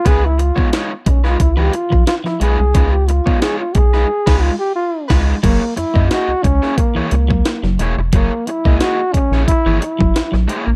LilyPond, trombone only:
\new Staff \with { instrumentName = "Trombone" } { \time 4/4 \key ges \major \tempo 4 = 89 aes'16 fes'16 f'8 r8 des'16 f'16 fes'16 g'16 f'8 f'16 fes'16 aes'8~ | aes'16 g'16 f'8 aes'16 f'16 aes'4 f'16 g'16 f'8 r8 | bes8 fes'8 ges'8 des'8 bes8 bes4 r8 | bes8 fes'8 ges'8 des'8 fes'8 fes'4 r8 | }